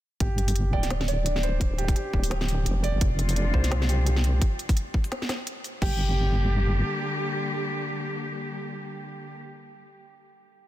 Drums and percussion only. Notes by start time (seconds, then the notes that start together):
0.20 kick, closed hi-hat
0.38 closed hi-hat
0.48 open hi-hat
0.56 closed hi-hat
0.73 kick
0.83 snare, open hi-hat
0.90 snare, closed hi-hat
1.01 snare
1.08 open hi-hat
1.26 closed hi-hat
1.36 snare
1.43 closed hi-hat
1.61 kick, closed hi-hat
1.78 closed hi-hat
1.88 kick, open hi-hat
1.96 closed hi-hat
2.13 kick
2.24 open hi-hat
2.31 snare, closed hi-hat
2.41 snare
2.48 open hi-hat
2.66 closed hi-hat
2.84 open hi-hat
3.01 kick, closed hi-hat
3.19 closed hi-hat
3.29 open hi-hat
3.36 closed hi-hat
3.54 kick
3.64 snare, open hi-hat
3.72 snare, closed hi-hat
3.82 snare
3.89 open hi-hat
4.07 closed hi-hat
4.16 snare
4.24 closed hi-hat
4.42 kick, closed hi-hat
4.59 closed hi-hat
4.69 kick, open hi-hat
4.77 closed hi-hat
4.94 kick
5.04 open hi-hat
5.12 snare, closed hi-hat
5.22 snare
5.29 snare, open hi-hat
5.47 closed hi-hat
5.64 open hi-hat
5.82 kick, crash